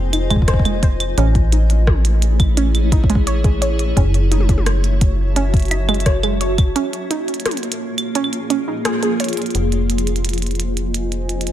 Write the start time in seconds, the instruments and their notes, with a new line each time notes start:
Already playing: fm bass F1, ambient pad F4 C5 D#5 G#5
0.13 synth arpeggio sound D#4, closed hi-hat, claves
0.30 synth arpeggio sound G#3, kick, closed hi-hat, claves
0.36 kick
0.42 kick
0.48 synth arpeggio sound C5, kick, cross-stick, closed hi-hat
0.54 kick
0.59 kick
0.65 synth arpeggio sound G#3, closed hi-hat, claves
0.83 synth arpeggio sound C5, kick, closed hi-hat
1.00 closed hi-hat, claves
1.18 fm bass A1, ambient pad A3, synth arpeggio sound C#4, closed hi-hat
1.23 ambient pad E4
1.35 kick, closed hi-hat
1.42 ambient pad C#5
1.47 ambient pad G#4
1.52 synth arpeggio sound D#4, closed hi-hat
1.70 closed hi-hat
1.87 kick, cross-stick, high tom
2.05 closed hi-hat
2.22 closed hi-hat
2.40 kick, closed hi-hat, claves
2.57 synth arpeggio sound C#4, closed hi-hat
2.75 closed hi-hat, claves
2.92 synth arpeggio sound D#4, kick, closed hi-hat
3.04 kick
3.10 synth arpeggio sound G#3, closed hi-hat
3.15 kick
3.27 synth arpeggio sound C#5, closed hi-hat
3.44 synth arpeggio sound G#3, kick, closed hi-hat
3.62 synth arpeggio sound C#5, closed hi-hat
3.79 closed hi-hat
3.97 fm bass F#1, synth arpeggio sound C#4, ambient pad F#4, kick, closed hi-hat
4.10 ambient pad E5
4.14 closed hi-hat
4.31 synth arpeggio sound D#4, closed hi-hat, high tom
4.40 high tom
4.49 kick, closed hi-hat, high tom
4.57 ambient pad A5, high tom
4.66 cross-stick, closed hi-hat
4.84 closed hi-hat
5.01 kick, closed hi-hat
5.36 synth arpeggio sound C#4, closed hi-hat
5.54 kick, closed hi-hat
5.57 closed hi-hat
5.60 closed hi-hat
5.62 closed hi-hat
5.65 closed hi-hat
5.68 synth arpeggio sound D#4, closed hi-hat
5.71 closed hi-hat, claves
5.88 synth arpeggio sound G#3, closed hi-hat, claves
5.94 closed hi-hat
6.00 closed hi-hat
6.06 synth arpeggio sound C#5, kick, cross-stick, closed hi-hat
6.23 synth arpeggio sound G#3, closed hi-hat, claves
6.41 synth arpeggio sound C#5, closed hi-hat
6.58 kick, closed hi-hat, claves
6.76 ambient pad A#3, synth arpeggio sound C#4, closed hi-hat
6.89 ambient pad F4
6.93 closed hi-hat
7.10 synth arpeggio sound D#4, closed hi-hat
7.28 closed hi-hat
7.34 closed hi-hat
7.40 closed hi-hat
7.46 cross-stick, closed hi-hat, high tom
7.51 ambient pad G#4, closed hi-hat
7.57 closed hi-hat
7.63 closed hi-hat
7.72 closed hi-hat
7.98 closed hi-hat, claves
8.15 synth arpeggio sound C#4, closed hi-hat
8.24 claves
8.33 closed hi-hat
8.50 synth arpeggio sound C#4, closed hi-hat
8.68 synth arpeggio sound D#4
8.85 synth arpeggio sound G#4, cross-stick, closed hi-hat
9.03 synth arpeggio sound G#4, closed hi-hat
9.20 synth arpeggio sound C#5, closed hi-hat
9.24 closed hi-hat
9.29 closed hi-hat
9.33 closed hi-hat
9.37 closed hi-hat
9.42 closed hi-hat
9.46 closed hi-hat
9.50 closed hi-hat
9.55 fm bass F1, closed hi-hat
9.72 closed hi-hat
9.78 ambient pad C5
9.90 closed hi-hat
9.98 closed hi-hat
10.07 ambient pad G#5, closed hi-hat
10.16 closed hi-hat
10.25 closed hi-hat
10.29 ambient pad D#5, closed hi-hat
10.33 closed hi-hat
10.38 closed hi-hat
10.42 closed hi-hat
10.46 closed hi-hat
10.51 closed hi-hat
10.55 closed hi-hat
10.60 closed hi-hat
10.77 closed hi-hat
10.94 closed hi-hat
11.12 closed hi-hat
11.29 closed hi-hat
11.41 closed hi-hat
11.47 closed hi-hat